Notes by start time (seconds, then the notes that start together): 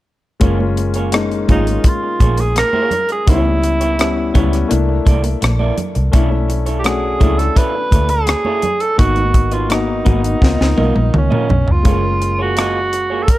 0.40 F#1 G#3 A#3 C#4 F4 G#4 C#5, kick, closed hi-hat, muted conga
0.60 muted clean electric guitar stroke, high conga
0.77 muted clean electric guitar stroke, closed hi-hat
0.94 A#3 F4 G#4 C#5, closed hi-hat
1.12 G#3 A#3 C#4 D#4, muted clean electric guitar stroke, cross-stick, closed hi-hat, muted conga
1.32 muted clean electric guitar stroke, closed hi-hat
1.48 G#1 G#3 A#3 C#4 D#4 F4 G#4 C#5, kick, closed hi-hat, muted conga, high conga, low conga
1.67 muted clean electric guitar stroke, closed hi-hat
1.84 kick, closed hi-hat, muted conga
1.88 F4
2.03 muted clean electric guitar stroke
2.20 A#1 A#3 F4 G#4 C#5, kick, closed hi-hat, high conga
2.37 G#4, muted clean electric guitar stroke, closed hi-hat
2.55 A#4, muted clean electric guitar stroke, cross-stick, closed hi-hat, high conga
2.73 A#3 F4 G#4 C#5, high conga
2.91 muted clean electric guitar stroke, closed hi-hat, muted conga, low conga
3.09 G#4, muted clean electric guitar stroke, closed hi-hat
3.26 C#2 G3 B3 C#4 D#4 E4 G4 C#5, kick, closed hi-hat, muted conga
3.34 E4
3.45 muted clean electric guitar stroke, high conga
3.62 muted clean electric guitar stroke, closed hi-hat, muted conga
3.81 B3 E4 G4 C#5, closed hi-hat
3.98 G3 B3 C#4 E4, muted clean electric guitar stroke, cross-stick, closed hi-hat
4.17 muted clean electric guitar stroke
4.34 C#2 G3 B3 C#4 E4 G4 C#5, kick, closed hi-hat, high conga, low conga
4.52 muted clean electric guitar stroke, cross-stick, closed hi-hat
4.68 C2 A3 A#3 D4 E4, muted clean electric guitar stroke, closed hi-hat
4.89 muted clean electric guitar stroke
5.06 C2 A#3 E4 A4 D5, kick, closed hi-hat, muted conga, high conga
5.24 muted clean electric guitar stroke, closed hi-hat
5.41 A#1, muted clean electric guitar stroke, cross-stick, closed hi-hat, high conga
5.59 A#3 E4 A4 D5, high conga
5.77 muted clean electric guitar stroke, closed hi-hat, muted conga, low conga
5.95 C2, muted clean electric guitar stroke, closed hi-hat
6.12 B1 A3 C#4 D4 E4 A4 C#5, kick, closed hi-hat, muted conga
6.31 muted clean electric guitar stroke, high conga
6.49 muted clean electric guitar stroke, closed hi-hat, muted conga
6.66 D4 E4 A4 C#5, closed hi-hat
6.79 G4
6.84 A3 C#4 D4 F#4 G#4, muted clean electric guitar stroke, cross-stick, closed hi-hat, muted conga
7.02 muted clean electric guitar stroke
7.19 C#2 A3 C#4 D4 E4 A4 C#5, kick, closed hi-hat, muted conga, high conga, low conga
7.38 A4, muted clean electric guitar stroke, cross-stick, closed hi-hat
7.56 D4 E4 A4 B4 C#5, kick, closed hi-hat
7.75 muted clean electric guitar stroke
7.91 D2 D4 E4 A4 C#5, kick, closed hi-hat, muted conga, high conga
8.09 G#4, muted clean electric guitar stroke, closed hi-hat
8.27 muted clean electric guitar stroke, cross-stick, closed hi-hat, high conga
8.45 D4 E4 A4 C#5, high conga
8.62 muted clean electric guitar stroke, closed hi-hat, low conga
8.80 A4, muted clean electric guitar stroke, closed hi-hat
8.97 G#1 A#3 B3 D#4 F#4 B4 D#5, kick, closed hi-hat, muted conga
9.16 muted clean electric guitar stroke, closed hi-hat, high conga
9.34 muted clean electric guitar stroke, kick, closed hi-hat, muted conga
9.52 D#4 F4 F#4 B4 D#5, closed hi-hat
9.69 A#3 B3 D#4 F#4, muted clean electric guitar stroke, cross-stick, closed hi-hat, muted conga
9.88 muted clean electric guitar stroke
10.05 G#1 A#3 B3 D#4 F#4 B4 D#5, kick, closed hi-hat, muted conga, high conga, low conga
10.23 muted clean electric guitar stroke, closed hi-hat
10.41 C#2 A#3 B3 D#4 F4, kick, snare
10.59 C#2, muted clean electric guitar stroke, snare
10.77 B1 B3 F4 A#4 D#5, high tom, muted conga, high conga
10.95 A#1, muted clean electric guitar stroke, high tom
11.13 C#2, muted clean electric guitar stroke, mid tom, high conga
11.18 C#4
11.30 B3 F4 A#4 D#5, mid tom, high conga
11.49 B1, muted clean electric guitar stroke, floor tom, muted conga, low conga
11.67 C#2, muted clean electric guitar stroke, floor tom
11.72 F4
11.83 F#1 G#3 A3 A#3 C#4 F4 G#4 F5, kick, closed hi-hat
11.87 A#3 C#5
12.03 muted clean electric guitar stroke
12.21 muted clean electric guitar stroke, closed hi-hat
12.39 A#3 F4 F#4 G#4 C#5
12.56 A#3 F4 F#4 G#4 D#5, cross-stick, closed hi-hat
12.93 muted clean electric guitar stroke, closed hi-hat
13.10 A#3 F4 G#4 C#5
13.23 A4
13.28 A#4, muted clean electric guitar stroke, kick, closed hi-hat